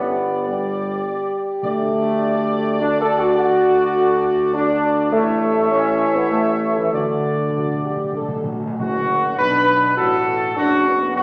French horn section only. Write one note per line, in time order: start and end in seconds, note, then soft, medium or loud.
0.00 2.80 G4 medium
1.62 5.11 A4 medium
2.80 5.13 F#4 medium
5.13 6.93 E4 medium
5.13 7.44 A4 medium
6.91 7.43 F#4 medium
7.53 7.82 F#4 medium
7.84 8.13 G4 medium
8.16 8.45 A4 medium
8.48 8.62 F#4 soft
9.38 9.93 D4 medium
9.95 10.51 F#4 medium
10.56 10.83 D4 medium
10.86 11.23 B3 medium